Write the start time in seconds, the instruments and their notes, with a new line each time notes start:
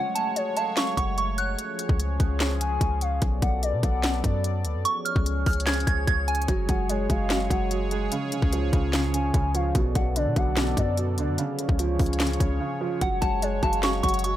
Already playing: analog synth pad F#3 G#3 A3 C#5, synth bell F#5
0.15 soft synth lead F#5, synth bell A5, closed hi-hat
0.36 soft synth lead C#5, closed hi-hat
0.56 soft synth lead F5, synth bell A5, closed hi-hat
0.77 synth bell C#6, snare, clap, closed hi-hat
0.97 808-style bass F#1, soft synth lead F#5, synth bell C#6, kick, closed hi-hat
1.18 synth bell C#6, closed hi-hat
1.38 synth bell F#6, closed hi-hat
1.59 analog synth pad F3 C#4 G#4, closed hi-hat
1.79 closed hi-hat
1.89 808-style bass C#2, kick
2.00 closed hi-hat
2.20 808-style bass C#2, kick, closed hi-hat
2.40 snare, clap, closed hi-hat
2.61 soft synth lead G#5, closed hi-hat
2.81 808-style bass C#2, kick, closed hi-hat
3.01 soft synth lead F5, closed hi-hat
3.22 808-style bass B1, analog synth pad F#3 B3 A4 D5, kick, closed hi-hat
3.42 808-style bass B1, soft synth lead F#5, kick, closed hi-hat
3.63 soft synth lead D5, closed hi-hat
3.73 808-style bass B2
3.83 808-style bass B1, soft synth lead F#5, kick, closed hi-hat
4.04 snare, clap, closed hi-hat
4.24 808-style bass F#2, soft synth lead D5, kick, closed hi-hat
4.44 closed hi-hat
4.65 808-style bass D2, closed hi-hat
4.75 808-style bass F#2
4.85 analog synth pad F3 C#4 G#4 C#5, synth bell C#6, closed hi-hat
5.05 synth bell F6, closed hi-hat
5.16 808-style bass C#2, kick
5.26 closed hi-hat
5.46 808-style bass C#2, synth bell F6, kick, closed hi-hat, open hi-hat
5.53 closed hi-hat
5.60 closed hi-hat
5.66 synth bell G#6, snare, clap, closed hi-hat
5.73 closed hi-hat
5.80 closed hi-hat
5.87 808-style bass C#2, synth bell G#6, kick, closed hi-hat
6.07 808-style bass C#2, synth bell G#6, kick, closed hi-hat
6.28 synth bell G#5, closed hi-hat
6.35 closed hi-hat
6.42 closed hi-hat
6.48 808-style bass F#1, felt piano F#3, analog synth pad F#3 G#3 G#4 C#5, kick, closed hi-hat
6.68 808-style bass F#1, felt piano F#3, soft synth lead F#5, kick, closed hi-hat
6.89 felt piano G#3, soft synth lead C#5, closed hi-hat
7.09 808-style bass F#1, felt piano F#3, soft synth lead F5, kick, closed hi-hat
7.30 felt piano F#3, snare, clap, closed hi-hat
7.50 808-style bass F#1, felt piano F#3, soft synth lead F#5, kick, closed hi-hat
7.71 felt piano F#3, closed hi-hat
7.91 felt piano G#3, closed hi-hat
8.12 felt piano C#3, analog synth pad F3 C#4, closed hi-hat
8.32 felt piano C#3, closed hi-hat
8.42 808-style bass C#2, kick
8.53 felt piano F3, closed hi-hat
8.73 808-style bass C#2, felt piano C#3, kick, closed hi-hat
8.93 felt piano C#3, snare, clap, closed hi-hat
9.14 felt piano C#3, soft synth lead G#5, closed hi-hat
9.34 808-style bass C#2, felt piano C#3, kick, closed hi-hat
9.54 felt piano F3, soft synth lead F5, closed hi-hat
9.75 808-style bass B1, felt piano B2, analog synth pad F#3 B3 A4 D5, kick, closed hi-hat
9.95 808-style bass B1, felt piano B2, soft synth lead F#5, kick, closed hi-hat
10.16 felt piano D3, soft synth lead D5, closed hi-hat
10.26 808-style bass B2
10.36 808-style bass B1, felt piano B2, soft synth lead F#5, kick, closed hi-hat
10.57 felt piano B2, snare, clap, closed hi-hat
10.77 808-style bass F#2, felt piano B2, soft synth lead D5, kick, closed hi-hat
10.97 felt piano B2, closed hi-hat
11.18 808-style bass D2, felt piano D3, closed hi-hat
11.28 808-style bass F#2
11.38 felt piano C#3, analog synth pad F3 C#4 G#4 C#5, closed hi-hat
11.59 felt piano C#3, closed hi-hat
11.69 808-style bass C#2, kick
11.79 felt piano F3, closed hi-hat
11.99 808-style bass C#2, felt piano C#3, kick, closed hi-hat, open hi-hat
12.06 closed hi-hat
12.13 closed hi-hat
12.20 felt piano C#3, snare, clap, closed hi-hat
12.27 closed hi-hat
12.33 closed hi-hat
12.40 808-style bass C#2, felt piano C#3, kick, closed hi-hat
12.60 felt piano C#3
12.81 felt piano F3
13.01 808-style bass F#1, felt piano F#3, analog synth pad F#3 G#3 C#5, synth bell F#5, kick, closed hi-hat
13.21 808-style bass F#1, felt piano F#3, soft synth lead F#5, synth bell A5, kick, closed hi-hat
13.42 felt piano G#3, soft synth lead C#5, closed hi-hat
13.62 808-style bass F#1, felt piano F#3, soft synth lead F5, synth bell A5, kick, closed hi-hat
13.73 closed hi-hat
13.83 felt piano F#3, synth bell C#6, snare, clap, closed hi-hat
14.03 808-style bass F#1, felt piano F#3, soft synth lead F#5, synth bell C#6, kick, closed hi-hat
14.09 closed hi-hat
14.14 closed hi-hat
14.19 closed hi-hat
14.24 felt piano F#3, synth bell C#6, closed hi-hat